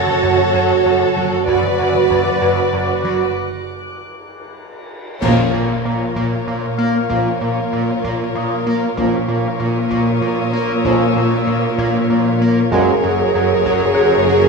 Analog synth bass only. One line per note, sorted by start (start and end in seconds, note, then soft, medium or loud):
0.23 0.42 F#2 medium
0.54 0.73 F#2 medium
0.86 1.04 F#2 medium
1.18 1.36 F#3 medium
1.48 1.67 F#2 medium
1.79 1.98 F#2 medium
2.10 2.29 F#2 medium
2.42 2.60 F#2 medium
2.73 2.92 F#2 medium
3.05 3.23 F#3 medium
5.22 5.41 A#2 loud
5.54 5.73 A#2 medium
5.85 6.04 A#2 medium
6.16 6.35 A#2 medium
6.48 6.66 A#2 medium
6.78 6.97 A#3 medium
7.10 7.28 A#2 medium
7.41 7.60 A#2 medium
7.73 7.91 A#2 medium
8.04 8.23 A#2 loud
8.35 8.54 A#2 medium
8.67 8.85 A#3 medium
8.97 9.16 A#2 medium
9.28 9.47 A#2 medium
9.60 9.78 A#2 medium
9.91 10.10 A#2 medium
10.22 10.41 A#2 medium
10.53 10.72 A#3 medium
10.85 11.04 A#2 loud
11.16 11.35 A#2 medium
11.47 11.66 A#2 medium
11.79 11.97 A#2 loud
12.10 12.29 A#2 medium
12.42 12.60 A#3 medium
12.72 12.91 F#2 loud
13.04 13.22 F#2 medium
13.35 13.54 F#2 medium
13.66 13.85 F#2 loud
13.97 14.16 F#2 medium
14.29 14.48 F#3 medium